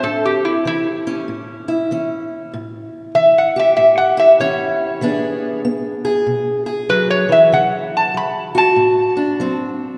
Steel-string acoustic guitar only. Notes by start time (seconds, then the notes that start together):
0.03 A2
0.65 E3
1.07 C#4
1.28 A2
1.68 E4
1.91 E3 C#4
2.53 A2
3.15 E3
3.56 G4
3.77 A2
4.17 E4
4.40 E3 C#4
5.01 E3 B3 D4 G#4
5.65 B3
6.05 G#4
6.26 B2
6.66 G#4
6.89 F#3
7.29 E3
7.52 D3
8.14 F#3
8.55 F#4
8.76 A2
9.17 D4
9.40 F#3 C4